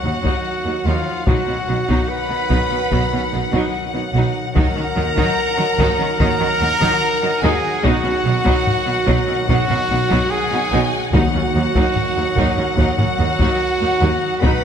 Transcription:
Already playing: D#3 F#3 F#4 F#5
0.03 D#2 F#3 D#4
0.23 D#2 F#3 D#4, taiko
0.64 D#2 F#3 D#4
0.85 D#2 F3 F#3 D#4 F4 F5
1.27 B1 B2 D#3 F#3 D#4 F#4 F#5, taiko
1.47 B2 F#3 C#4
1.68 B1 B2 F#3 D#4
1.88 B2 F#3 D#4, taiko
2.09 B4 B5
2.29 B2 F#3 D#4
2.49 B1 B2 F#3 D#4, taiko
2.69 B2 F#3 C#4
2.90 B1 B2 F#3 D#4, taiko
3.12 B2 F#3 C#4
3.32 B1 B2 F#3 D#4
3.52 B2 F#3 D#4, taiko
3.94 B2 F#3 D#4
4.13 B1 B2 F#3 D#4
4.55 D#2 D#3 F#3 D#4 A#4 F#5 A#5, taiko
4.75 D#3 F#3 C#4
4.96 D#2 D#3 F#3 D#4
5.16 D#3 F#3 D#4, taiko
5.57 D#3 F#3 D#4
5.78 D#2 D#3 F#3 D#4, taiko
5.99 D#3 F#3 C#4
6.19 D#2 D#3 F#3 D#4 A#4 A#5, taiko
6.39 D#3 F#3 C#4
6.60 D#2 D#3 F#3 D#4
6.81 D#3 F#3 D#4, taiko
7.22 D#3 F#3 D#4
7.43 D#2 D#3 F#3 D#4 G#4 G#5
7.83 B1 B2 D#3 F#3 D#4 F#4 F#5, taiko
8.04 B2 F#3 C#4
8.25 B1 B2 F#3 D#4
8.44 B2 F#3 D#4, taiko
8.67 taiko low-mid
8.86 B2 F#3 D#4
9.07 B1 B2 F#3 D#4, taiko
9.28 B2 F#3 C#4
9.48 B1 B2 F#3 D#4 F#4 F#5, taiko
9.68 B2 F#3 C#4, taiko low-mid
9.89 B1 B2 F#3 D#4
10.10 B2 F#3 D#4, taiko
10.30 G#4 G#5
10.52 B2 F#3 D#4
10.71 B1 B2 F#3 D#4
11.13 D#2 D#3 F#3 D#4 F#4 F#5, taiko
11.34 D#2 F#3 C#4
11.54 D#2 F#3 D#4
11.75 D#2 F#3 D#4, taiko
11.96 taiko low-mid
12.16 D#2 F#3 D#4
12.36 D#2 F#3 D#4, taiko
12.57 D#2 F#3 C#4
12.76 D#2 F#3 D#4 F#4 F#5, taiko
12.97 D#2 F#3 C#4, taiko low-mid
13.18 D#2 F#3 D#4
13.39 D#2 F#3 D#4, taiko
13.80 D#2 F#3 D#4
14.01 D#2 F#3 D#4
14.42 B1 B2 D#3 F#3 D#4 B4 F#5 B5, taiko

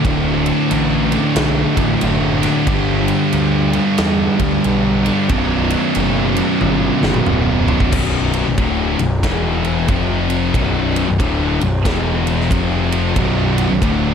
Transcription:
0.04 D1 D2 A2 D3 F#3 A3 D4, kick, ride
0.46 ride
0.71 A1, ride
1.12 D2 A2 D3, ride
1.36 B1, snare, ride
1.76 A1 D2 A2 D3, kick, ride
2.01 F#1 D2 A2 D3, ride
2.42 D2 A2 D3 F#3 A3 D4, snare, ride
2.65 G1 G2 D3 G3 B3 D4 G4, kick, ride
3.08 ride
3.32 D2, ride
3.73 G2 D3 G3, ride
3.98 E2, snare, ride
4.39 D2 G2 D3 G3, kick, ride
4.63 B1 G2 D3 G3, ride
5.04 G2 D3 G3 B3 D4 G4, ride
5.29 B0 B1 F#2 B2 F#3 D4, kick, ride
5.70 ride
5.95 F#1, ride
6.36 B1 F#2 B2, ride
6.61 G1, high tom
7.02 F#1 B1 F#2 B2, snare
7.14 mid tom
7.26 D1 B1 F#2 B2, mid tom
7.67 B1 F#2 B2 F#3 D4, floor tom
7.80 kick
7.92 B0 B1 F#2 B2, kick, crash
8.33 ride
8.46 B0 B1 F#2
8.58 D1 D2 A2 D3, kick, ride
8.99 B0 B1 F#2, ride
9.23 E1 E2 B2 E3, kick, snare, ride
9.65 ride
9.88 F1 F2 C3 F3, kick, ride
10.30 ride
10.54 B0 B1 F#2 B2, kick, ride
10.96 ride
11.07 B0 B1 F#2
11.19 D1 D2 A2 D3, kick, ride
11.60 B0 B1 F#2, ride
11.85 E1 E2 B2 E3, kick, snare, ride
12.27 ride
12.40 snare
12.50 F1 F2 C3 F3, kick, ride
12.92 ride
13.16 B0 B1 F#2 B2, kick, ride
13.58 ride
13.69 B0 B1 F#2
13.82 D1 D2 A2 D3, kick, ride

